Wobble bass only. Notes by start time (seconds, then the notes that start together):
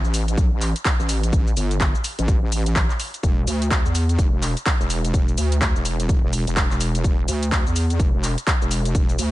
0.04 A1
0.37 B1
0.52 A1
0.99 A1
1.33 A1
1.56 G1
2.19 A1
2.42 A1
3.23 E1
3.47 D2
3.85 E2
4.19 F1
4.33 E1
4.80 E1
5.14 E1
5.37 D2
5.76 E1
6.23 E1
6.47 E1
6.71 E1
7.04 E1
7.28 D2
7.66 E2
7.99 F1
8.14 E1
8.61 E1
8.95 E1
9.19 D2